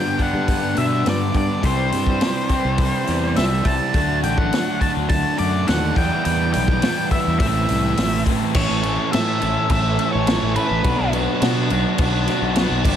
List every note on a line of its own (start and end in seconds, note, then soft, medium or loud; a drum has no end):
0.00 0.16 G2 medium
0.00 0.17 D3 medium
0.00 0.19 G3 medium
0.00 0.17 B3 medium
0.00 0.17 D4 medium
0.00 0.16 G4 loud
0.00 0.22 G5 loud
0.17 1.61 D3 medium
0.17 1.62 G3 medium
0.17 1.61 B3 medium
0.17 1.61 D4 medium
0.17 1.60 G4 medium
0.17 kick medium
0.17 open hi-hat soft
0.21 1.62 G2 medium
0.21 0.80 F#5 medium
0.34 0.61 G2 medium
0.48 kick medium
0.48 open hi-hat medium
0.75 1.03 G2 medium
0.75 1.04 B2 medium
0.75 1.04 D3 medium
0.75 1.04 G3 medium
0.75 1.03 B3 medium
0.75 1.03 D4 medium
0.75 1.07 E5 loud
0.75 open hi-hat soft
1.04 1.61 G2 medium
1.04 1.33 G2 medium
1.04 1.60 D3 medium
1.04 1.62 G3 medium
1.04 1.62 B3 medium
1.04 snare loud
1.04 open hi-hat medium
1.08 1.63 D4 medium
1.08 1.36 D5 medium
1.34 1.48 G2 medium
1.34 1.65 D5 medium
1.34 kick medium
1.34 open hi-hat medium
1.62 1.90 C2 medium
1.62 2.47 C3 medium
1.62 2.48 E3 medium
1.62 2.48 G3 medium
1.62 2.47 C4 medium
1.62 3.03 E4 medium
1.62 2.46 G4 medium
1.62 3.42 C5 medium
1.62 kick loud
1.62 open hi-hat medium
1.92 2.19 G2 medium
1.92 open hi-hat medium
2.06 kick medium
2.21 snare loud
2.21 open hi-hat medium
2.48 3.93 E3 medium
2.48 3.92 G3 medium
2.48 3.92 C4 medium
2.48 3.91 G4 medium
2.48 kick medium
2.48 open hi-hat medium
2.52 3.93 C3 medium
2.65 2.91 C2 medium
2.78 kick loud
2.78 open hi-hat medium
3.04 3.35 E2 medium
3.04 3.34 C3 medium
3.04 3.34 G3 medium
3.04 3.34 C4 medium
3.04 3.33 E4 medium
3.04 open hi-hat soft
3.35 3.64 C2 medium
3.35 3.92 C3 medium
3.35 3.92 G3 medium
3.35 3.93 C4 medium
3.35 3.94 E4 medium
3.35 3.66 E5 loud
3.35 snare loud
3.35 open hi-hat medium
3.65 3.79 C2 medium
3.65 4.19 A5 medium
3.65 kick medium
3.65 open hi-hat medium
3.93 4.21 D2 medium
3.93 4.78 D3 medium
3.93 5.37 F#3 medium
3.93 4.79 A3 medium
3.93 4.79 D4 medium
3.93 4.79 F#4 loud
3.93 kick loud
3.93 open hi-hat medium
4.23 4.50 A1 medium
4.23 4.38 G5 medium
4.23 open hi-hat soft
4.38 4.81 F#5 loud
4.38 kick medium
4.52 snare loud
4.52 open hi-hat medium
4.80 5.95 A3 medium
4.80 5.95 D4 medium
4.80 5.94 F#4 medium
4.80 4.89 A5 medium
4.80 kick medium
4.80 open hi-hat soft
4.85 5.96 D3 medium
4.96 5.23 D2 medium
5.09 5.36 A5 loud
5.09 kick loud
5.09 open hi-hat medium
5.37 5.66 F#2 medium
5.37 5.66 F#3 medium
5.37 5.65 A3 medium
5.37 5.65 D4 medium
5.37 5.68 D5 medium
5.37 open hi-hat soft
5.41 5.65 D3 medium
5.67 5.95 D#2 medium
5.67 5.93 D3 medium
5.67 5.95 F#3 medium
5.67 5.95 A3 medium
5.67 5.96 D4 medium
5.67 5.97 F#5 medium
5.67 snare loud
5.67 open hi-hat medium
5.94 6.79 E2 medium
5.94 6.10 E2 medium
5.94 6.80 B2 loud
5.94 6.81 E3 medium
5.94 6.81 G3 loud
5.94 6.82 B3 loud
5.94 6.23 G5 medium
5.94 kick loud
5.94 open hi-hat medium
5.99 6.82 E4 loud
6.25 6.52 E2 loud
6.25 6.52 G5 loud
6.25 open hi-hat medium
6.53 6.81 B1 loud
6.53 7.07 G5 loud
6.53 open hi-hat medium
6.68 kick medium
6.81 7.37 E2 medium
6.81 7.38 B2 medium
6.81 7.38 E3 medium
6.81 7.38 G3 medium
6.81 7.39 B3 medium
6.81 7.39 E4 medium
6.81 snare loud
6.81 open hi-hat medium
7.11 7.38 E5 medium
7.11 kick medium
7.11 open hi-hat medium
7.27 7.40 E2 medium
7.38 7.67 A1 loud
7.38 8.24 A2 medium
7.38 8.24 E3 loud
7.38 8.25 A3 medium
7.38 8.25 C4 medium
7.38 8.22 E5 medium
7.38 kick loud
7.38 open hi-hat medium
7.43 8.24 E4 loud
7.68 7.96 C2 loud
7.68 open hi-hat medium
7.97 8.25 A1 medium
7.97 snare loud
7.97 open hi-hat medium
8.25 8.40 A1 medium
8.25 8.53 A2 medium
8.25 8.54 E3 medium
8.25 8.54 A3 medium
8.25 8.53 C4 medium
8.25 8.53 E4 medium
8.25 kick medium
8.25 open hi-hat medium
8.54 8.69 A1 loud
8.54 8.81 A2 medium
8.54 8.81 E3 loud
8.54 8.82 A3 loud
8.54 8.83 C#4 loud
8.54 8.84 E4 medium
8.54 10.82 A4 medium
8.54 8.83 A4 loud
8.54 9.09 C#5 loud
8.54 10.83 C#5 medium
8.54 12.96 B5 medium
8.54 kick loud
8.54 crash loud
8.54 crash medium
8.71 8.97 A1 medium
8.82 9.11 A2 medium
8.82 9.11 E3 medium
8.82 9.12 A3 medium
8.82 9.12 C#4 medium
8.82 9.12 E4 medium
8.82 9.13 A4 medium
8.82 crash medium
9.12 9.39 A2 loud
9.12 9.40 A2 medium
9.12 9.40 E3 loud
9.12 9.40 A3 loud
9.12 9.41 C#4 loud
9.12 9.41 E4 loud
9.12 9.41 A4 loud
9.12 9.70 E5 loud
9.12 snare loud
9.12 crash medium
9.40 9.55 A1 medium
9.40 9.67 A2 medium
9.40 9.68 E3 medium
9.40 9.69 A3 medium
9.40 9.69 C#4 medium
9.40 9.71 E4 loud
9.40 9.69 A4 loud
9.40 crash soft
9.68 9.97 A1 loud
9.68 9.96 A2 medium
9.68 9.97 E3 medium
9.68 9.98 A3 medium
9.68 9.98 C#4 medium
9.68 9.98 E4 medium
9.68 9.98 A4 medium
9.68 10.12 E5 loud
9.68 kick loud
9.68 crash medium
9.97 10.25 A2 medium
9.97 10.26 E3 loud
9.97 10.26 A3 loud
9.97 10.27 C#4 loud
9.97 10.29 E4 loud
9.97 10.27 A4 loud
9.97 crash medium
10.13 10.41 A1 loud
10.13 10.53 C#5 medium
10.26 10.54 A2 medium
10.26 10.55 E3 medium
10.26 10.56 A3 medium
10.26 10.56 C#4 loud
10.26 10.56 E4 medium
10.26 10.57 A4 loud
10.26 snare loud
10.26 crash medium
10.43 10.56 A1 medium
10.56 10.83 A2 medium
10.56 10.83 E3 loud
10.56 10.83 A3 loud
10.56 10.83 C#4 medium
10.56 10.84 E4 loud
10.56 10.84 A4 medium
10.56 11.09 B4 medium
10.56 crash medium
10.71 10.84 A1 medium
10.84 10.98 B1 loud
10.84 11.11 B2 medium
10.84 11.12 F#3 loud
10.84 11.13 B3 loud
10.84 11.14 D4 loud
10.84 12.83 F#4 medium
10.84 11.14 F#4 loud
10.84 12.96 D5 medium
10.84 kick loud
10.84 crash medium
11.00 11.26 B1 medium
11.12 11.40 B2 medium
11.12 11.40 F#3 medium
11.12 11.41 B3 medium
11.12 11.42 D4 medium
11.12 11.42 F#4 medium
11.12 crash medium
11.41 11.68 B2 loud
11.41 11.68 B2 medium
11.41 11.69 F#3 medium
11.41 11.70 B3 medium
11.41 11.71 D4 loud
11.41 11.70 F#4 loud
11.41 snare loud
11.41 crash medium
11.69 11.84 B1 medium
11.69 11.96 B2 medium
11.69 11.97 F#3 medium
11.69 11.98 B3 medium
11.69 11.98 D4 loud
11.69 11.99 F#4 medium
11.69 crash medium
11.97 12.26 B1 loud
11.97 12.25 B2 medium
11.97 12.25 F#3 medium
11.97 12.26 B3 medium
11.97 12.26 D4 loud
11.97 12.27 F#4 medium
11.97 kick loud
11.97 crash medium
12.26 12.54 B2 medium
12.26 12.55 F#3 medium
12.26 12.55 B3 loud
12.26 12.56 D4 loud
12.26 12.57 F#4 loud
12.26 snare soft
12.26 crash medium
12.42 12.69 B1 medium
12.55 12.83 B2 medium
12.55 12.83 F#3 medium
12.55 12.83 B3 loud
12.55 12.84 D4 loud
12.55 12.84 F#4 loud
12.55 snare loud
12.55 crash medium
12.70 12.84 B1 medium
12.84 12.96 G1 loud
12.84 12.96 G2 loud
12.84 12.96 D3 loud
12.84 12.96 G3 loud
12.84 12.96 B3 loud
12.84 12.96 D4 loud
12.84 12.96 G4 medium
12.84 12.96 G4 loud
12.84 kick loud
12.84 crash loud